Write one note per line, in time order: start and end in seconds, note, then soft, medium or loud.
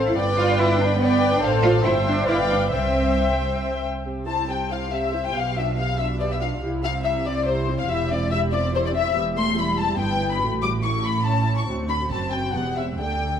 0.00 0.12 A1 medium
0.00 0.15 A4 medium
0.00 0.12 C5 medium
0.00 0.14 C5 medium
0.00 0.15 F5 medium
0.07 0.11 E4 medium
0.15 1.39 G1 medium
0.15 0.99 B4 medium
0.15 0.98 D5 medium
0.15 0.58 D5 medium
0.15 1.01 G5 medium
0.38 0.57 F4 loud
0.59 0.80 E4 loud
0.59 1.00 B4 medium
0.79 1.00 D4 medium
0.99 1.30 B3 medium
0.99 1.41 B4 medium
0.99 1.41 D5 medium
0.99 1.43 D5 medium
0.99 1.42 G5 medium
1.32 1.42 D4 medium
1.41 1.84 A1 medium
1.41 1.84 A4 medium
1.41 1.82 C5 medium
1.41 1.85 F5 medium
1.62 1.71 F4 loud
1.62 1.84 D5 medium
1.83 2.26 G1 medium
1.83 1.92 E4 medium
1.83 2.26 C5 medium
1.83 2.27 C5 medium
1.83 2.27 E5 medium
1.83 2.26 G5 medium
2.07 2.27 D4 medium
2.26 2.71 G1 medium
2.26 2.35 E4 medium
2.26 2.71 B4 medium
2.26 2.71 D5 medium
2.26 2.71 F5 medium
2.26 2.70 G5 medium
2.50 2.58 D4 medium
2.71 3.85 C2 medium
2.71 3.60 C4 medium
2.71 3.83 C5 medium
2.71 3.83 E5 medium
2.71 3.81 E5 medium
2.71 3.83 G5 medium
4.05 5.31 C2 soft
4.05 5.31 C3 soft
4.05 4.26 C4 soft
4.05 4.26 G4 soft
4.27 4.49 E4 soft
4.27 4.49 C5 soft
4.27 4.47 A5 medium
4.27 4.48 A5 medium
4.49 4.70 C4 soft
4.49 4.70 G4 soft
4.49 4.57 G5 soft
4.49 4.71 G5 soft
4.70 4.92 E4 soft
4.70 4.92 C5 soft
4.70 4.79 F5 soft
4.70 4.93 F5 medium
4.91 5.12 C4 soft
4.91 5.12 G4 soft
4.91 5.23 E5 medium
4.91 5.25 E5 medium
5.12 5.35 E4 soft
5.12 5.35 C5 soft
5.24 5.35 G5 medium
5.24 5.36 G5 medium
5.34 6.60 B1 soft
5.34 6.59 B2 soft
5.34 5.55 B3 soft
5.34 5.55 G4 soft
5.34 5.57 F5 medium
5.56 5.78 D4 soft
5.56 5.78 F4 soft
5.56 5.78 E5 soft
5.56 5.66 E5 medium
5.78 5.99 B3 soft
5.78 5.99 G4 soft
5.78 5.99 F5 medium
5.78 6.00 F5 medium
5.98 6.20 D4 soft
5.98 6.20 F4 soft
5.98 6.20 E5 medium
5.98 6.06 E5 medium
6.20 6.40 B3 soft
6.20 6.40 G4 soft
6.20 6.25 D5 medium
6.20 6.31 D5 medium
6.31 6.41 E5 soft
6.31 6.36 E5 medium
6.41 6.62 D4 soft
6.41 6.62 F4 soft
6.41 6.62 F5 soft
6.41 6.49 F5 medium
6.62 7.87 C2 soft
6.62 7.86 C3 medium
6.62 6.82 E4 soft
6.62 6.82 G4 soft
6.84 7.05 C4 soft
6.84 7.04 E4 soft
6.84 7.03 F5 medium
6.84 6.92 F5 medium
7.04 7.25 E4 soft
7.04 7.26 G4 soft
7.04 7.25 E5 medium
7.04 7.13 E5 medium
7.25 7.47 C4 medium
7.25 7.46 E4 soft
7.25 7.46 D5 medium
7.25 7.47 D5 medium
7.46 7.66 E4 soft
7.46 7.66 G4 soft
7.46 7.78 C5 medium
7.46 7.79 C5 medium
7.68 7.89 C4 soft
7.68 7.89 E4 soft
7.79 7.83 F5 medium
7.79 7.90 F5 medium
7.89 9.13 E1 medium
7.89 9.13 E2 soft
7.89 8.09 E4 medium
7.89 8.09 G4 medium
7.89 8.11 E5 medium
8.10 8.32 C4 soft
8.10 8.31 E4 soft
8.10 8.31 D5 medium
8.10 8.32 D5 medium
8.31 8.51 E4 soft
8.31 8.52 G4 medium
8.31 8.39 E5 medium
8.31 8.40 E5 medium
8.52 8.73 C4 soft
8.52 8.73 E4 medium
8.52 8.60 D5 medium
8.52 8.73 D5 medium
8.74 8.92 E4 medium
8.74 8.93 G4 soft
8.74 8.84 C5 medium
8.74 8.79 C5 medium
8.85 8.95 D5 medium
8.85 8.90 D5 medium
8.94 9.15 C4 soft
8.94 9.15 E4 soft
8.94 9.16 E5 medium
9.14 9.95 E1 medium
9.14 9.95 E2 medium
9.14 9.22 B3 medium
9.14 9.54 G4 soft
9.36 9.56 A3 soft
9.36 9.45 C6 medium
9.36 9.56 C6 medium
9.56 9.99 G3 medium
9.56 9.97 E4 medium
9.56 9.78 B5 medium
9.56 9.79 B5 medium
9.79 10.00 A5 medium
9.98 10.42 G1 medium
9.98 10.41 G2 medium
9.98 10.41 B3 medium
9.98 10.40 E4 medium
9.98 10.31 G5 medium
10.31 10.42 B5 medium
10.41 11.69 A1 medium
10.41 11.68 A2 medium
10.41 10.63 A3 medium
10.41 10.84 F#4 medium
10.62 10.70 G3 soft
10.62 10.70 D6 medium
10.83 11.25 A3 soft
10.83 11.24 E4 medium
10.83 10.91 C#6 medium
10.83 11.04 C#6 medium
11.04 11.25 B5 medium
11.04 11.26 B5 medium
11.25 11.67 C#4 soft
11.25 11.67 E4 soft
11.25 11.57 A5 medium
11.57 11.68 C#6 medium
11.57 11.62 C#6 medium
11.68 12.08 D2 medium
11.68 12.09 D2 medium
11.68 12.08 C4 medium
11.68 12.08 F#4 soft
11.89 11.97 B5 medium
11.89 12.10 B5 medium
12.10 12.55 F#1 soft
12.10 12.55 F#2 soft
12.10 12.54 C4 medium
12.10 12.54 F#4 soft
12.10 12.32 A5 medium
12.10 12.33 A5 soft
12.32 12.55 G5 medium
12.32 12.55 G5 soft
12.53 13.01 E1 soft
12.53 13.01 E2 soft
12.53 12.76 B3 soft
12.53 12.99 G4 soft
12.53 12.77 F#5 medium
12.53 12.77 F#5 soft
12.76 13.00 C4 soft
12.76 12.85 E5 soft
12.76 13.00 E5 soft
12.99 13.40 D2 soft
12.99 13.40 D4 soft
12.99 13.40 A4 soft
12.99 13.40 G5 medium